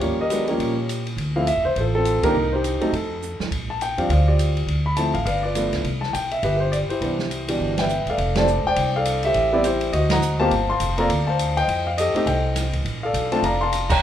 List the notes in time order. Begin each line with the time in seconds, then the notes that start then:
Already playing: F4 G4 C#5
0.01 D#2 F3 G3 A#3 C#4, ride
0.21 G4 A#4 D#5
0.30 F#3 G#3 B3 D4, hi-hat pedal, ride
0.48 F3 G3 A#3 C#4 F4 G4 C#5, ride
0.59 A#2, ride
0.89 hi-hat pedal, ride
1.07 ride
1.17 D2, ride
1.36 F3 A3 C4 E4 F5
1.47 E5, hi-hat pedal, ride
1.57 F2
1.65 C2 C5
1.76 A1 C5, ride
1.80 F4 A4
1.95 C4 F4 A4
2.05 hi-hat pedal, ride
2.23 D#3 G3 A#3 D4 D#4 A#4, muted upright bass stroke, kick, ride
2.34 C2
2.52 D#4 G4 C5
2.64 hi-hat pedal, ride
2.81 F#3 A3 C4 D#4 A4, muted upright bass stroke, ride
2.92 F2, ride
3.22 hi-hat pedal
3.40 muted upright bass stroke, snare
3.51 A#1, kick, ride
3.70 A5
3.81 G5, hi-hat pedal, ride
3.97 F2 F3 G3 C4 D4 F5, ride
4.09 D2 C5 D5 F5, ride
4.28 F4 G4 D5
4.39 hi-hat pedal, ride
4.57 ride
4.67 D2, ride
4.86 B5
4.97 F3 A3 C4 E4 A5, hi-hat pedal, ride
5.14 A1 F5, ride
5.25 G1 B4 D5 F5, ride
5.43 F4 B4 D5
5.55 F3 A3 B3 D4, hi-hat pedal, ride
5.72 C#2, snare, ride
5.84 C2, ride
6.01 A5, snare
6.13 B1 G5, hi-hat pedal, ride
6.31 E5, ride
6.43 G1 G4 B4 E5, ride
6.57 B4 C5
6.72 D5, hi-hat pedal, ride
6.89 E4 G4 C5, muted upright bass stroke, ride
7.01 C2 E3 G3 B3 D4, ride
7.19 snare
7.31 hi-hat pedal, ride
7.48 B2 E3 G3 D4, ride
7.60 G1
7.78 B4 E5 G5, snare, ride
7.89 hi-hat pedal
8.06 E1 F5, ride
8.10 A4 D5
8.18 F1, ride
8.36 G3 A3 C4 D4 C5 D5 A5, snare, ride
8.48 hi-hat pedal
8.64 E1 C5 D5 G5
8.76 C2, ride
8.96 A4 D5 F5
9.05 hi-hat pedal, ride
9.23 G4 C5 E5, ride
9.34 A1, ride
9.52 G3 B3 C4 E4 D5
9.64 E4 G4 C5, hi-hat pedal, ride
9.81 ride
9.92 D2 F#4 C5 D#5, ride
10.10 D#5 F#5 A#5, snare, ride
10.22 hi-hat pedal
10.40 A#3 C4 F4 G4 C5 F5 A5
10.51 G1, ride
10.70 F5 A5 C6
10.80 F1, hi-hat pedal, ride
10.98 A#3 C4 F4 A4 D5 F5 A#5, ride
11.09 D2, ride
11.27 C5 F5 A5
11.39 hi-hat pedal, ride
11.57 C5 D#5 G5, ride
11.68 F2, ride
11.87 F5
11.98 G4 A4 D#5, hi-hat pedal, ride
12.15 A3 C4 D#4 G4, muted upright bass stroke, ride
12.26 C2 C5 D#5 G5, ride
12.56 snare, hi-hat pedal, ride
12.73 kick, ride
12.85 A#1, ride
13.03 A4 D5 F5
13.13 B1, hi-hat pedal, ride
13.32 A3 C4 D4 F4 A5, ride
13.42 F1 D5 F5 A#5, ride
13.61 F5 A5 C6
13.73 hi-hat pedal, ride
13.90 C#5 G5 A#5, kick, crash